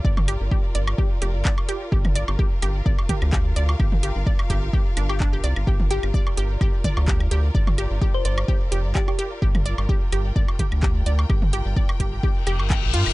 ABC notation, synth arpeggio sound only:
X:1
M:4/4
L:1/16
Q:"Swing 16ths" 1/4=128
K:Gm
V:1 name="Synth arpeggio sound"
d z G z G z d z G z G z d z G z | G z d z G z G z d z G z G z d z | G z G z d z G z G z D G D G d z | G z G z d z G z G z d z G z G z |
d z G z G z d z G z G z d z G z | G z d z G z G z d z G z G z d z | G z G z d z G z G z G z g z F z |]